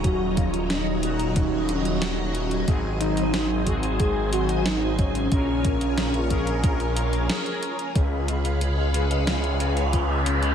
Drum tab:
HH |x-xxx-xxx-xxx-xx|x-xxx-xxx-xxx-xx|x-xxxxxxxxxxxxxx|x-xxx-xxxxxxx-xx|
SD |----o-------o---|----o-------o---|----o-------o---|--------o-------|
BD |o-o-----o-------|o-----o-o-----o-|o-o---o-o-------|o-----------o---|